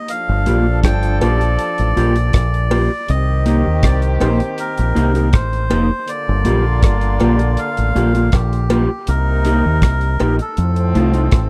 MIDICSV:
0, 0, Header, 1, 6, 480
1, 0, Start_track
1, 0, Key_signature, -2, "minor"
1, 0, Tempo, 749064
1, 56, Time_signature, 4, 2, 24, 8
1, 7366, End_track
2, 0, Start_track
2, 0, Title_t, "Melodica"
2, 0, Program_c, 0, 22
2, 0, Note_on_c, 0, 75, 103
2, 61, Note_on_c, 0, 77, 112
2, 73, Note_off_c, 0, 75, 0
2, 513, Note_off_c, 0, 77, 0
2, 541, Note_on_c, 0, 79, 112
2, 762, Note_off_c, 0, 79, 0
2, 783, Note_on_c, 0, 74, 119
2, 1496, Note_off_c, 0, 74, 0
2, 1505, Note_on_c, 0, 74, 109
2, 1984, Note_on_c, 0, 75, 107
2, 1995, Note_off_c, 0, 74, 0
2, 2212, Note_off_c, 0, 75, 0
2, 2221, Note_on_c, 0, 75, 89
2, 2464, Note_on_c, 0, 74, 99
2, 2466, Note_off_c, 0, 75, 0
2, 2571, Note_off_c, 0, 74, 0
2, 2705, Note_on_c, 0, 72, 91
2, 2811, Note_off_c, 0, 72, 0
2, 2945, Note_on_c, 0, 70, 96
2, 3421, Note_on_c, 0, 72, 112
2, 3434, Note_off_c, 0, 70, 0
2, 3903, Note_on_c, 0, 74, 112
2, 3912, Note_off_c, 0, 72, 0
2, 4371, Note_off_c, 0, 74, 0
2, 4380, Note_on_c, 0, 74, 95
2, 4861, Note_on_c, 0, 77, 110
2, 4872, Note_off_c, 0, 74, 0
2, 5345, Note_on_c, 0, 67, 94
2, 5352, Note_off_c, 0, 77, 0
2, 5824, Note_on_c, 0, 70, 107
2, 5834, Note_off_c, 0, 67, 0
2, 6640, Note_off_c, 0, 70, 0
2, 6674, Note_on_c, 0, 69, 86
2, 7362, Note_off_c, 0, 69, 0
2, 7366, End_track
3, 0, Start_track
3, 0, Title_t, "Clean electric guitar"
3, 0, Program_c, 1, 27
3, 296, Note_on_c, 1, 58, 77
3, 299, Note_on_c, 1, 65, 89
3, 303, Note_on_c, 1, 67, 88
3, 416, Note_off_c, 1, 58, 0
3, 418, Note_off_c, 1, 65, 0
3, 419, Note_off_c, 1, 67, 0
3, 775, Note_on_c, 1, 58, 73
3, 779, Note_on_c, 1, 65, 93
3, 781, Note_on_c, 1, 67, 92
3, 895, Note_off_c, 1, 58, 0
3, 898, Note_off_c, 1, 65, 0
3, 899, Note_off_c, 1, 67, 0
3, 1257, Note_on_c, 1, 58, 76
3, 1261, Note_on_c, 1, 65, 87
3, 1265, Note_on_c, 1, 67, 96
3, 1376, Note_off_c, 1, 58, 0
3, 1378, Note_off_c, 1, 65, 0
3, 1381, Note_off_c, 1, 67, 0
3, 1733, Note_on_c, 1, 58, 80
3, 1737, Note_on_c, 1, 65, 87
3, 1740, Note_on_c, 1, 67, 95
3, 1854, Note_off_c, 1, 58, 0
3, 1857, Note_off_c, 1, 65, 0
3, 1858, Note_off_c, 1, 67, 0
3, 2214, Note_on_c, 1, 58, 78
3, 2218, Note_on_c, 1, 63, 84
3, 2222, Note_on_c, 1, 67, 84
3, 2335, Note_off_c, 1, 58, 0
3, 2337, Note_off_c, 1, 63, 0
3, 2339, Note_off_c, 1, 67, 0
3, 2691, Note_on_c, 1, 58, 86
3, 2695, Note_on_c, 1, 63, 93
3, 2699, Note_on_c, 1, 67, 93
3, 2813, Note_off_c, 1, 58, 0
3, 2815, Note_off_c, 1, 63, 0
3, 2817, Note_off_c, 1, 67, 0
3, 3171, Note_on_c, 1, 58, 90
3, 3174, Note_on_c, 1, 63, 87
3, 3176, Note_on_c, 1, 67, 95
3, 3293, Note_off_c, 1, 58, 0
3, 3293, Note_off_c, 1, 67, 0
3, 3295, Note_off_c, 1, 63, 0
3, 3301, Note_on_c, 1, 67, 70
3, 3304, Note_on_c, 1, 63, 61
3, 3308, Note_on_c, 1, 58, 58
3, 3385, Note_off_c, 1, 67, 0
3, 3387, Note_off_c, 1, 63, 0
3, 3389, Note_off_c, 1, 58, 0
3, 3651, Note_on_c, 1, 58, 93
3, 3654, Note_on_c, 1, 63, 103
3, 3658, Note_on_c, 1, 67, 99
3, 3773, Note_off_c, 1, 58, 0
3, 3775, Note_off_c, 1, 63, 0
3, 3777, Note_off_c, 1, 67, 0
3, 4129, Note_on_c, 1, 58, 96
3, 4136, Note_on_c, 1, 65, 93
3, 4138, Note_on_c, 1, 67, 106
3, 4252, Note_off_c, 1, 58, 0
3, 4255, Note_off_c, 1, 65, 0
3, 4256, Note_off_c, 1, 67, 0
3, 4614, Note_on_c, 1, 58, 81
3, 4618, Note_on_c, 1, 65, 87
3, 4622, Note_on_c, 1, 67, 93
3, 4734, Note_off_c, 1, 58, 0
3, 4736, Note_off_c, 1, 65, 0
3, 4738, Note_off_c, 1, 67, 0
3, 5093, Note_on_c, 1, 58, 84
3, 5097, Note_on_c, 1, 65, 100
3, 5102, Note_on_c, 1, 67, 92
3, 5214, Note_off_c, 1, 58, 0
3, 5215, Note_off_c, 1, 65, 0
3, 5215, Note_off_c, 1, 67, 0
3, 5223, Note_on_c, 1, 67, 64
3, 5225, Note_on_c, 1, 65, 60
3, 5229, Note_on_c, 1, 58, 59
3, 5305, Note_off_c, 1, 67, 0
3, 5307, Note_off_c, 1, 65, 0
3, 5309, Note_off_c, 1, 58, 0
3, 5573, Note_on_c, 1, 58, 93
3, 5578, Note_on_c, 1, 65, 95
3, 5581, Note_on_c, 1, 67, 102
3, 5693, Note_off_c, 1, 58, 0
3, 5696, Note_off_c, 1, 65, 0
3, 5697, Note_off_c, 1, 67, 0
3, 6054, Note_on_c, 1, 58, 97
3, 6058, Note_on_c, 1, 63, 96
3, 6059, Note_on_c, 1, 67, 103
3, 6174, Note_off_c, 1, 58, 0
3, 6176, Note_off_c, 1, 63, 0
3, 6176, Note_off_c, 1, 67, 0
3, 6532, Note_on_c, 1, 58, 74
3, 6537, Note_on_c, 1, 63, 90
3, 6540, Note_on_c, 1, 67, 90
3, 6653, Note_off_c, 1, 58, 0
3, 6655, Note_off_c, 1, 63, 0
3, 6657, Note_off_c, 1, 67, 0
3, 7015, Note_on_c, 1, 57, 83
3, 7019, Note_on_c, 1, 63, 89
3, 7022, Note_on_c, 1, 65, 93
3, 7131, Note_off_c, 1, 65, 0
3, 7134, Note_off_c, 1, 57, 0
3, 7136, Note_off_c, 1, 63, 0
3, 7139, Note_on_c, 1, 65, 66
3, 7142, Note_on_c, 1, 63, 66
3, 7148, Note_on_c, 1, 57, 58
3, 7223, Note_off_c, 1, 65, 0
3, 7225, Note_off_c, 1, 63, 0
3, 7227, Note_off_c, 1, 57, 0
3, 7366, End_track
4, 0, Start_track
4, 0, Title_t, "Horn section"
4, 0, Program_c, 2, 61
4, 55, Note_on_c, 2, 69, 95
4, 56, Note_on_c, 2, 53, 86
4, 56, Note_on_c, 2, 62, 91
4, 1710, Note_off_c, 2, 53, 0
4, 1710, Note_off_c, 2, 62, 0
4, 1710, Note_off_c, 2, 69, 0
4, 1973, Note_on_c, 2, 51, 90
4, 1974, Note_on_c, 2, 60, 91
4, 1974, Note_on_c, 2, 67, 98
4, 3628, Note_off_c, 2, 51, 0
4, 3629, Note_off_c, 2, 60, 0
4, 3629, Note_off_c, 2, 67, 0
4, 3893, Note_on_c, 2, 58, 91
4, 3893, Note_on_c, 2, 65, 99
4, 3894, Note_on_c, 2, 50, 92
4, 5547, Note_off_c, 2, 58, 0
4, 5548, Note_off_c, 2, 50, 0
4, 5548, Note_off_c, 2, 65, 0
4, 5812, Note_on_c, 2, 58, 83
4, 5812, Note_on_c, 2, 63, 93
4, 5813, Note_on_c, 2, 48, 87
4, 6518, Note_off_c, 2, 58, 0
4, 6518, Note_off_c, 2, 63, 0
4, 6519, Note_off_c, 2, 48, 0
4, 6770, Note_on_c, 2, 45, 83
4, 6771, Note_on_c, 2, 60, 97
4, 6772, Note_on_c, 2, 53, 91
4, 7366, Note_off_c, 2, 45, 0
4, 7366, Note_off_c, 2, 53, 0
4, 7366, Note_off_c, 2, 60, 0
4, 7366, End_track
5, 0, Start_track
5, 0, Title_t, "Fingered electric bass"
5, 0, Program_c, 3, 33
5, 187, Note_on_c, 3, 31, 88
5, 291, Note_off_c, 3, 31, 0
5, 301, Note_on_c, 3, 34, 88
5, 523, Note_off_c, 3, 34, 0
5, 538, Note_on_c, 3, 31, 97
5, 761, Note_off_c, 3, 31, 0
5, 780, Note_on_c, 3, 34, 87
5, 1002, Note_off_c, 3, 34, 0
5, 1149, Note_on_c, 3, 33, 75
5, 1252, Note_off_c, 3, 33, 0
5, 1262, Note_on_c, 3, 34, 97
5, 1483, Note_off_c, 3, 34, 0
5, 1501, Note_on_c, 3, 34, 94
5, 1841, Note_off_c, 3, 34, 0
5, 1983, Note_on_c, 3, 36, 106
5, 2322, Note_off_c, 3, 36, 0
5, 2350, Note_on_c, 3, 39, 78
5, 2452, Note_off_c, 3, 39, 0
5, 2459, Note_on_c, 3, 36, 84
5, 2681, Note_off_c, 3, 36, 0
5, 2702, Note_on_c, 3, 34, 86
5, 2818, Note_off_c, 3, 34, 0
5, 3070, Note_on_c, 3, 34, 83
5, 3172, Note_off_c, 3, 34, 0
5, 3183, Note_on_c, 3, 36, 90
5, 3420, Note_off_c, 3, 36, 0
5, 3420, Note_on_c, 3, 33, 104
5, 3642, Note_off_c, 3, 33, 0
5, 3662, Note_on_c, 3, 29, 79
5, 3778, Note_off_c, 3, 29, 0
5, 4029, Note_on_c, 3, 31, 101
5, 4131, Note_off_c, 3, 31, 0
5, 4141, Note_on_c, 3, 34, 94
5, 4362, Note_off_c, 3, 34, 0
5, 4377, Note_on_c, 3, 31, 86
5, 4600, Note_off_c, 3, 31, 0
5, 4621, Note_on_c, 3, 34, 93
5, 4842, Note_off_c, 3, 34, 0
5, 4988, Note_on_c, 3, 33, 79
5, 5090, Note_off_c, 3, 33, 0
5, 5100, Note_on_c, 3, 34, 93
5, 5322, Note_off_c, 3, 34, 0
5, 5340, Note_on_c, 3, 34, 107
5, 5680, Note_off_c, 3, 34, 0
5, 5820, Note_on_c, 3, 36, 104
5, 6160, Note_off_c, 3, 36, 0
5, 6189, Note_on_c, 3, 39, 101
5, 6290, Note_off_c, 3, 39, 0
5, 6295, Note_on_c, 3, 36, 100
5, 6519, Note_off_c, 3, 36, 0
5, 6541, Note_on_c, 3, 34, 87
5, 6656, Note_off_c, 3, 34, 0
5, 6780, Note_on_c, 3, 41, 97
5, 7001, Note_off_c, 3, 41, 0
5, 7020, Note_on_c, 3, 36, 94
5, 7241, Note_off_c, 3, 36, 0
5, 7259, Note_on_c, 3, 33, 98
5, 7366, Note_off_c, 3, 33, 0
5, 7366, End_track
6, 0, Start_track
6, 0, Title_t, "Drums"
6, 54, Note_on_c, 9, 42, 94
6, 118, Note_off_c, 9, 42, 0
6, 296, Note_on_c, 9, 42, 90
6, 360, Note_off_c, 9, 42, 0
6, 535, Note_on_c, 9, 42, 106
6, 536, Note_on_c, 9, 36, 111
6, 542, Note_on_c, 9, 37, 107
6, 599, Note_off_c, 9, 42, 0
6, 600, Note_off_c, 9, 36, 0
6, 607, Note_off_c, 9, 37, 0
6, 658, Note_on_c, 9, 42, 57
6, 722, Note_off_c, 9, 42, 0
6, 777, Note_on_c, 9, 42, 76
6, 779, Note_on_c, 9, 56, 74
6, 841, Note_off_c, 9, 42, 0
6, 843, Note_off_c, 9, 56, 0
6, 903, Note_on_c, 9, 42, 60
6, 967, Note_off_c, 9, 42, 0
6, 1017, Note_on_c, 9, 42, 79
6, 1081, Note_off_c, 9, 42, 0
6, 1141, Note_on_c, 9, 42, 63
6, 1205, Note_off_c, 9, 42, 0
6, 1263, Note_on_c, 9, 42, 68
6, 1327, Note_off_c, 9, 42, 0
6, 1382, Note_on_c, 9, 42, 55
6, 1446, Note_off_c, 9, 42, 0
6, 1494, Note_on_c, 9, 42, 96
6, 1499, Note_on_c, 9, 36, 125
6, 1500, Note_on_c, 9, 37, 117
6, 1558, Note_off_c, 9, 42, 0
6, 1563, Note_off_c, 9, 36, 0
6, 1564, Note_off_c, 9, 37, 0
6, 1627, Note_on_c, 9, 42, 47
6, 1691, Note_off_c, 9, 42, 0
6, 1737, Note_on_c, 9, 46, 52
6, 1737, Note_on_c, 9, 56, 83
6, 1801, Note_off_c, 9, 46, 0
6, 1801, Note_off_c, 9, 56, 0
6, 1976, Note_on_c, 9, 42, 84
6, 2040, Note_off_c, 9, 42, 0
6, 2215, Note_on_c, 9, 42, 85
6, 2280, Note_off_c, 9, 42, 0
6, 2453, Note_on_c, 9, 42, 112
6, 2455, Note_on_c, 9, 36, 119
6, 2461, Note_on_c, 9, 37, 108
6, 2517, Note_off_c, 9, 42, 0
6, 2520, Note_off_c, 9, 36, 0
6, 2525, Note_off_c, 9, 37, 0
6, 2576, Note_on_c, 9, 42, 52
6, 2640, Note_off_c, 9, 42, 0
6, 2694, Note_on_c, 9, 42, 70
6, 2698, Note_on_c, 9, 37, 62
6, 2700, Note_on_c, 9, 56, 72
6, 2758, Note_off_c, 9, 42, 0
6, 2762, Note_off_c, 9, 37, 0
6, 2764, Note_off_c, 9, 56, 0
6, 2820, Note_on_c, 9, 42, 60
6, 2884, Note_off_c, 9, 42, 0
6, 2934, Note_on_c, 9, 42, 82
6, 2998, Note_off_c, 9, 42, 0
6, 3060, Note_on_c, 9, 42, 65
6, 3124, Note_off_c, 9, 42, 0
6, 3181, Note_on_c, 9, 42, 69
6, 3245, Note_off_c, 9, 42, 0
6, 3300, Note_on_c, 9, 42, 57
6, 3364, Note_off_c, 9, 42, 0
6, 3414, Note_on_c, 9, 42, 98
6, 3418, Note_on_c, 9, 36, 127
6, 3420, Note_on_c, 9, 37, 111
6, 3478, Note_off_c, 9, 42, 0
6, 3482, Note_off_c, 9, 36, 0
6, 3484, Note_off_c, 9, 37, 0
6, 3544, Note_on_c, 9, 42, 49
6, 3608, Note_off_c, 9, 42, 0
6, 3655, Note_on_c, 9, 42, 80
6, 3657, Note_on_c, 9, 56, 81
6, 3719, Note_off_c, 9, 42, 0
6, 3721, Note_off_c, 9, 56, 0
6, 3893, Note_on_c, 9, 42, 95
6, 3957, Note_off_c, 9, 42, 0
6, 4132, Note_on_c, 9, 42, 94
6, 4196, Note_off_c, 9, 42, 0
6, 4373, Note_on_c, 9, 42, 105
6, 4374, Note_on_c, 9, 36, 121
6, 4381, Note_on_c, 9, 37, 114
6, 4438, Note_off_c, 9, 36, 0
6, 4438, Note_off_c, 9, 42, 0
6, 4445, Note_off_c, 9, 37, 0
6, 4494, Note_on_c, 9, 42, 55
6, 4558, Note_off_c, 9, 42, 0
6, 4612, Note_on_c, 9, 42, 74
6, 4616, Note_on_c, 9, 37, 61
6, 4617, Note_on_c, 9, 56, 72
6, 4676, Note_off_c, 9, 42, 0
6, 4680, Note_off_c, 9, 37, 0
6, 4681, Note_off_c, 9, 56, 0
6, 4737, Note_on_c, 9, 42, 61
6, 4801, Note_off_c, 9, 42, 0
6, 4851, Note_on_c, 9, 42, 83
6, 4916, Note_off_c, 9, 42, 0
6, 4980, Note_on_c, 9, 42, 60
6, 5044, Note_off_c, 9, 42, 0
6, 5100, Note_on_c, 9, 42, 69
6, 5165, Note_off_c, 9, 42, 0
6, 5221, Note_on_c, 9, 42, 57
6, 5285, Note_off_c, 9, 42, 0
6, 5332, Note_on_c, 9, 42, 90
6, 5337, Note_on_c, 9, 36, 115
6, 5338, Note_on_c, 9, 37, 116
6, 5396, Note_off_c, 9, 42, 0
6, 5401, Note_off_c, 9, 36, 0
6, 5402, Note_off_c, 9, 37, 0
6, 5465, Note_on_c, 9, 42, 52
6, 5529, Note_off_c, 9, 42, 0
6, 5574, Note_on_c, 9, 42, 76
6, 5575, Note_on_c, 9, 56, 83
6, 5639, Note_off_c, 9, 42, 0
6, 5639, Note_off_c, 9, 56, 0
6, 5812, Note_on_c, 9, 42, 93
6, 5876, Note_off_c, 9, 42, 0
6, 6053, Note_on_c, 9, 42, 89
6, 6117, Note_off_c, 9, 42, 0
6, 6292, Note_on_c, 9, 42, 106
6, 6293, Note_on_c, 9, 36, 115
6, 6300, Note_on_c, 9, 37, 111
6, 6356, Note_off_c, 9, 42, 0
6, 6357, Note_off_c, 9, 36, 0
6, 6364, Note_off_c, 9, 37, 0
6, 6414, Note_on_c, 9, 42, 53
6, 6478, Note_off_c, 9, 42, 0
6, 6533, Note_on_c, 9, 42, 70
6, 6537, Note_on_c, 9, 56, 75
6, 6597, Note_off_c, 9, 42, 0
6, 6601, Note_off_c, 9, 56, 0
6, 6659, Note_on_c, 9, 42, 56
6, 6723, Note_off_c, 9, 42, 0
6, 6774, Note_on_c, 9, 42, 83
6, 6838, Note_off_c, 9, 42, 0
6, 6897, Note_on_c, 9, 42, 60
6, 6961, Note_off_c, 9, 42, 0
6, 7018, Note_on_c, 9, 42, 74
6, 7082, Note_off_c, 9, 42, 0
6, 7136, Note_on_c, 9, 42, 56
6, 7200, Note_off_c, 9, 42, 0
6, 7250, Note_on_c, 9, 42, 93
6, 7255, Note_on_c, 9, 36, 123
6, 7256, Note_on_c, 9, 37, 112
6, 7314, Note_off_c, 9, 42, 0
6, 7319, Note_off_c, 9, 36, 0
6, 7320, Note_off_c, 9, 37, 0
6, 7366, End_track
0, 0, End_of_file